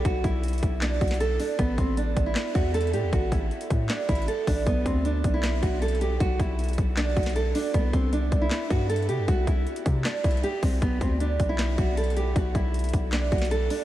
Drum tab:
HH |x-----------x-----------x--x--x--x--x-----------x-----------x---x---x---x-----------o-----------|x-----------x-----------x-----------x-----------x-----------x-----------x---x---x---x-----------|x-----------x-----------x-----x-----x-----------x-----------x---x---x---x-----------o-----------|x-----------x-----------x-----------x-----------x-----------x-----------x---x---x---x-----------|
CP |------------------------------------------------x-----------------------------------------------|------------------------------------------------x-----------------------------------------------|------------------------------------------------x-----------------------------------------------|------------------------------------------------x-----------------------------------------------|
SD |------------------------------------------------o-----------------o-----------------------------|------------------------------------------------o-----------------------------------------------|------------------------------------------------o-----------------------------------------------|------------------------------------------------o-----------------------------------------------|
BD |o-----------o-----------------------o-----------------------o-----------------------------------|o-----------o-----------------------o-----------------------o-----------------------------------|o-----------o-----------------------o-----------------------o-----------------------o-----------|o-----------o-----------------------o-----------------------o-----------------------------------|

HH |x-----------x-----------x--x--x--x--x-----------x-----------x---x---x---x-----------o-----------|x-----------x-----------x-----------x-----------x-----------x-----------x---x---x---x-----------|x-----------x-----------x-----x-----x-----------x-----------x---x---x---x-----------o-----------|x-----------x-----------x-----------x-----------x-----------x-----------x---x---x---x-----------|
CP |------------------------------------------------x-----------------------------------------------|------------------------------------------------x-----------------------------------------------|------------------------------------------------x-----------------------------------------------|------------------------------------------------x-----------------------------------------------|
SD |------------------------------------------------o-----------------o-----------------------------|------------------------------------------------o-----------------------------------------------|------------------------------------------------o-----------------------------------------------|------------------------------------------------o-----------------------------------------------|
BD |o-----------o-----------------------o-----------------------o-----------------------------------|o-----------o-----------------------o-----------------------o-----------------------------------|o-----------o-----------------------o-----------------------o-----------------------o-----------|o-----------o-----------------------o-----------------------o-----------------------------------|

HH |x-----------x-----------x--x--x--x--x-----------x-----------x---x---x---x-----------o-----------|
CP |------------------------------------------------x-----------------------------------------------|
SD |------------------------------------------------o-----------------o-----------------------------|
BD |o-----------o-----------------------o-----------------------o-----------------------------------|